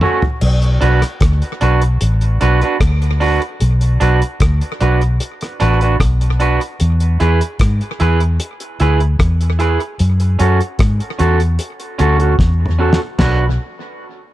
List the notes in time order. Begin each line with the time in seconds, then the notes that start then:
0.01 A3 C#4 F#4, mid tom
0.22 floor tom
0.41 B1, crash
0.62 closed hi-hat
0.81 B1 D4 F#4 B4, closed hi-hat
1.02 cross-stick, closed hi-hat
1.21 D2, kick, cross-stick, closed hi-hat
1.42 closed hi-hat
1.61 B1 D4 F#4 B4, closed hi-hat
1.82 closed hi-hat
2.01 A1, closed hi-hat
2.21 closed hi-hat
2.41 B1 D4 F#4 B4, closed hi-hat
2.61 D4 F#4 B4, closed hi-hat
2.80 D2, kick, cross-stick, closed hi-hat
3.02 closed hi-hat
3.20 D4 F#4 B4, open hi-hat
3.42 closed hi-hat
3.60 B1, closed hi-hat
3.81 closed hi-hat
4.00 B1 D4 F#4 B4, closed hi-hat
4.22 closed hi-hat
4.40 D2, kick, cross-stick, closed hi-hat
4.61 closed hi-hat
4.80 B1 D4 F#4 B4, closed hi-hat
5.01 closed hi-hat
5.20 closed hi-hat
5.41 cross-stick, closed hi-hat
5.60 A1 D4 F#4 B4, closed hi-hat
5.81 D4 F#4 B4, closed hi-hat
6.00 B1, kick, cross-stick, closed hi-hat
6.21 closed hi-hat
6.40 D4 F#4 B4, closed hi-hat
6.61 closed hi-hat
6.80 E2, closed hi-hat
7.00 closed hi-hat
7.20 E2 E4 G#4 B4, closed hi-hat
7.41 closed hi-hat
7.59 G#2, kick, cross-stick, closed hi-hat
7.81 closed hi-hat
8.00 E2 E4 G#4 B4, closed hi-hat
8.20 closed hi-hat
8.40 closed hi-hat
8.60 closed hi-hat
8.80 D2 E4 G#4 B4, closed hi-hat
9.00 closed hi-hat
9.19 E2, kick, cross-stick, closed hi-hat
9.41 closed hi-hat
9.59 E4 G#4 B4, closed hi-hat
9.80 closed hi-hat
9.99 F#2, closed hi-hat
10.20 closed hi-hat
10.39 F#2 C#4 F#4 A4, closed hi-hat
10.61 closed hi-hat
10.79 G#2, kick, cross-stick, closed hi-hat
11.00 closed hi-hat
11.19 E2 C#4 F#4 A4, closed hi-hat
11.40 closed hi-hat
11.59 closed hi-hat
11.80 closed hi-hat
11.99 D2 C#4 F#4 A4, closed hi-hat
12.19 C#4 F#4 A4, closed hi-hat
12.39 E2, kick, snare
12.66 mid tom
12.79 C#4 F#4 A4
12.93 snare
13.19 B1 D4 F#4 B4, snare, floor tom, crash